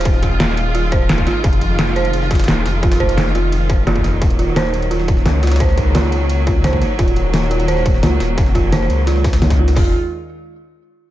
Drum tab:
RD |x---x---x---x---x---x---x---x---|x-x-x---x---x-x-x---xxxxx---x---|x-x---x-x---x---x---x---x---x---|x-x-x---x---x-x-x---x---x---xxxx|
HH |x---x-x-x---x-x-x-x-x---x---x---|x---x-x-----x-x-x---x---x---x---|x---x-x-x---x-x-x-x-x---x---x---|x---x-x-x---x-x-x-x-x---x---x---|
SH |----x-------x-------x-------x-x-|----x-------x-------x-------x-x-|----x-------x-------x-------x-x-|----x-------x-------x-----------|
SD |--o-----o-o-------------o---o---|--------o-o-------o-ooooo---o---|--o-----o-o-------------o---o---|--------o-o-------o---o-o---oooo|
FT |--------------------------------|--------------------------------|--------------------------------|--------------------------------|
BD |o---o---------------o-----o-----|o-------------------o-----------|o---o---------------o-----o-----|o-------------------o-----------|

RD |x---x---x---x---x---x---x---x---|x-x-x---x---x-x-x---x---x---x---|x---x---x---x---x---x-x-x-x---x-|--------------------------------|
HH |x---x-x-x-----x-x-----------x---|----x-x-----x-x-x-----------x---|------------x---x-------x---x---|o-------------------------------|
SH |----x-------x-------------------|--------------------------------|--------------------------------|--------------------------------|
SD |--o-----o-o-------------o---o---|--------o-o-------o---o-o---o---|--o-----o-o-----o-o-o-o-o-o-o-o-|--------------------------------|
FT |--------------------------------|--------------------------------|--------------------------------|o-------------------------------|
BD |o---o---------------o-----o-----|o-------------------o-----------|o---o---------------o-----o-----|o-------------------------------|